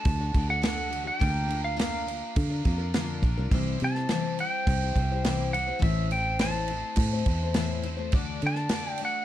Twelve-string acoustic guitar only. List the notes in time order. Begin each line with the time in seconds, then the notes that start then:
Already playing: A3 D4 F#4 A4
0.18 D4 F#4 A4
0.33 A3 D4 F#4 A4
0.49 D4 F#4 A4
0.62 D3 A3 D4 F#4 A4
0.89 A3 D4 F#4 A4
1.04 D4 F#4 A4
1.19 D3 A#3 D4 F4 A#4
1.48 A#3 D4 F4 A#4
1.76 D3 A#3 D4 F4 A#4
2.06 A#3 D4 F4 A#4
2.49 D4 F4 A#4
2.65 A#3 D4 F4 A#4
2.78 D4 F4 A#4
2.94 D3 A#3 D4 F4 A#4
3.22 A#3 D4 F4 A#4
3.37 D4 F4 A#4
3.51 C3 E3 G3 C4 E4 C5
3.80 G3 C4 E4 C5
4.11 C3 E3 G3 C4 E4 C5
4.40 G3 C4 E4 C5
4.83 G3 C4 E4 C5
4.98 G3 C4 E4 C5
5.11 G3 C4 E4 C5
5.26 C3 E3 G3 C4 E4 C5
5.54 G3 C4 E4 C5
5.67 G3 C4 E4 C5
5.79 A2 E3 A3 C4 E4 C5
6.11 A3 C4 E4 C5
6.39 A2 E3 A3 C4 E4 C5
6.70 A3 C4 E4 C5
7.12 A3 C4 E4 C5
7.26 A3 C4 E4 C5
7.42 A3 C4 E4 C5
7.55 A2 E3 A3 C4 E4 C5
7.83 A3 C4 E4 C5
7.97 A3 C4 E4 C5
8.13 D3 A3 D4 F#4 D5
8.41 A3 D4 F#4 D5
8.71 D3 A3 D4 F#4 D5
9.00 A3 D4 F#4 D5